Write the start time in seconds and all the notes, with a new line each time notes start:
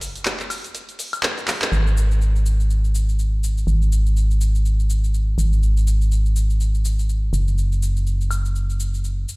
0.01 closed hi-hat, open hi-hat, cabasa
0.16 closed hi-hat, cabasa
0.25 snare, clap, closed hi-hat, cabasa
0.40 clap, closed hi-hat, cabasa
0.50 closed hi-hat, open hi-hat, cabasa, high woodblock
0.64 closed hi-hat, cabasa
0.75 closed hi-hat, cabasa
0.89 closed hi-hat, cabasa
0.99 closed hi-hat, open hi-hat, cabasa
1.13 closed hi-hat, cabasa, high woodblock
1.23 snare, clap, closed hi-hat, cabasa
1.38 snare, closed hi-hat, cabasa
1.48 snare, clap, closed hi-hat, open hi-hat, cabasa
1.62 snare, clap, closed hi-hat, cabasa
1.72 G#1, cabasa
1.87 cabasa
1.97 cabasa
2.11 cabasa
2.22 cabasa
2.36 cabasa
2.46 cabasa
2.60 cabasa
2.70 cabasa
2.85 cabasa
2.95 cabasa
3.09 cabasa
3.19 cabasa
3.44 cabasa
3.58 cabasa
3.67 G#1, cabasa
3.82 cabasa
3.92 cabasa
4.06 cabasa
4.17 cabasa
4.31 cabasa
4.41 cabasa
4.55 cabasa
4.65 cabasa
4.80 cabasa
4.90 cabasa
5.04 cabasa
5.14 cabasa
5.38 G#1, cabasa
5.53 cabasa
5.63 cabasa
5.77 cabasa
5.87 cabasa
6.01 cabasa
6.12 cabasa
6.26 cabasa
6.36 cabasa
6.50 cabasa
6.60 cabasa
6.75 cabasa
6.85 cabasa
6.99 cabasa
7.09 cabasa
7.33 F#1, cabasa
7.48 cabasa
7.58 cabasa
7.72 cabasa
7.83 cabasa
7.97 cabasa
8.07 cabasa
8.21 cabasa
8.31 cabasa, high woodblock
8.45 cabasa
8.56 cabasa
8.70 cabasa
8.80 cabasa
8.94 cabasa
9.04 cabasa
9.29 cabasa